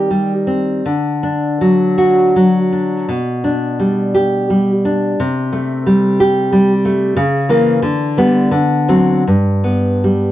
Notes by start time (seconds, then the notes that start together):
Already playing: D#3 C4 G4
0.11 G3
0.47 C4
0.86 D3
1.23 D4
1.61 F#3
1.98 F#4
2.36 F#3
2.73 D4
3.09 B2
3.44 D4
3.80 G3
4.15 G4
4.50 G3
4.85 D4
5.20 C3
5.53 A3
5.86 G3
6.20 G4
6.52 G3
6.85 A3
7.17 C#3
7.49 E3 A#3
7.82 D3
8.17 G3 B3
8.51 D3
8.88 F#3 C4
9.27 G2
9.64 B3
10.04 G3